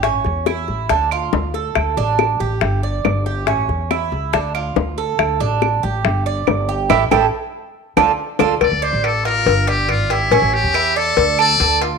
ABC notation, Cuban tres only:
X:1
M:4/4
L:1/8
Q:1/4=140
K:Dm
V:1 name="Cuban tres"
^C2 E2 D F2 A- | A D2 G2 d2 G | ^C2 E2 D F2 A- | A D2 G2 d2 G |
[EGA] [EGA] z3 [DFA] z [DFA] | z d2 F2 d2 G | ^C2 E d2 A2 F |]